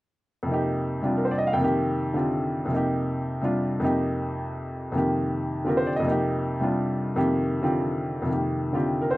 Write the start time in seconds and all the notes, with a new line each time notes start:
0.43 F2 C3
0.48 A#3 D#4
0.54 G4
1.01 C3 G3 D4 F4
1.17 A#4
1.25 C5
1.31 D5
1.38 D#5
1.47 F5
1.53 F2 C3 G5
1.59 D#3 A#3
1.64 G4
2.14 D3 C4 F4 G4
2.66 F2 C3
2.71 A#3 D#4
2.76 G4
3.41 C3 G3 D4 F4
3.80 F2 C3 A#3 D#4
3.85 G4
4.92 F2 C3 A#3
4.96 D#3 G4
5.64 D3 C4 F4 G4 A#4
5.77 C5
5.87 D5
5.96 F2 D#5
6.03 C3 A#3
6.08 D#4 G4
6.60 C3 G3 D4 F4
7.16 F2 C3 D#3 A#3 G4
7.62 D3 C4 F4 G4
8.22 F2 C3
8.27 D#3 A#3
8.33 G4
8.73 D3 C4 F4 G4
9.02 A#4
9.11 C5